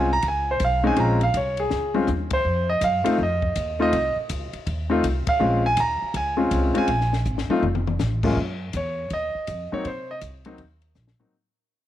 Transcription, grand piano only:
Already playing: G#5
0.13 A#5
0.28 G#5
0.51 C5
0.64 F5
0.83 G#3 C4 C#4 D#4 G#5
0.97 G#3 C4 C#4 F4 A#5
1.23 F5
1.37 C#5
1.60 G#4
1.94 G#3 C4 C#4 F4
2.33 C5
2.69 D#5
2.84 F5
3.04 A3 C4 D#4 F4
3.23 D#5
3.79 A3 C4 D#4 F4 D#5
4.90 A3 C4 D#4 F4
5.29 F5
5.39 G#3 C4 C#4 F4
5.66 G#5
5.80 A#5
6.17 G#5
6.37 G#3 C4 C#4 F4
6.74 G#3 C4 C#4 F4 G#5
7.50 A3 C4 D#4 F4
8.24 F#2 G#3 A#3 C#4 F4
8.77 C#5
9.13 D#5
9.72 F#3 A#3 C4 D#4 C#5
9.87 C5
10.11 D#5
10.46 F#3 A#3 C4 D#4
11.19 F#3 A#3 C4 D#4

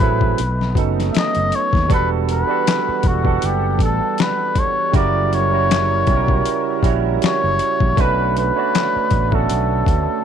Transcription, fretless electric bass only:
0.01 A1
0.40 B1
0.76 F#1
1.16 muted fretless electric bass stroke
1.36 F#1
1.74 D#2
1.91 E1
2.89 muted fretless electric bass stroke
3.04 E1
3.44 F#1
3.80 A1
4.94 F#1
6.08 B1
6.84 A#1
7.23 muted fretless electric bass stroke
7.44 F#1
7.81 A#1
7.98 B1
8.96 muted fretless electric bass stroke
9.12 A1
9.51 B1
9.87 D2

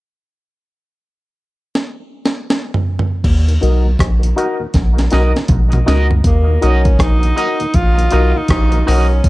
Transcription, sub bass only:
3.25 D#2
3.63 B1
4.00 A#1
4.75 A#1
5.13 B1
5.49 A#1
5.88 C#2
6.25 D#2
6.63 B1
6.99 A#1
7.75 A#1
8.13 B1
8.49 A#1
8.88 B1
9.25 C#2

